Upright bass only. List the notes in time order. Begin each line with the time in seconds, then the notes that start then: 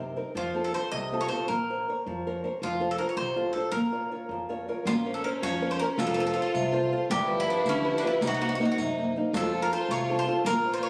Already playing: F#2
0.35 F2
0.92 C2
1.49 A#1
2.06 F2
2.62 F1
3.17 C2
3.72 A#1
4.29 F2
4.85 A#1
5.42 F2
5.98 F1
6.54 C2
7.10 G1
7.65 D2
8.21 C2
8.77 F#2
9.33 F2
9.88 C2
10.45 A#1